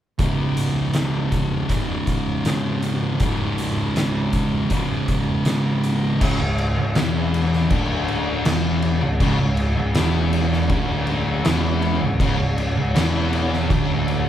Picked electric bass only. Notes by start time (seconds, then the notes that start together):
6.21 C#1
6.40 C#1
6.78 C#1
6.97 E1
7.71 D1
8.47 E1
9.02 C#1
9.20 C#1
9.40 C#1
9.78 C#1
9.96 E1
10.70 D1
11.46 E1
12.01 C#1
12.20 C#1
12.39 C#1
12.77 C#1
12.95 E1
13.70 D1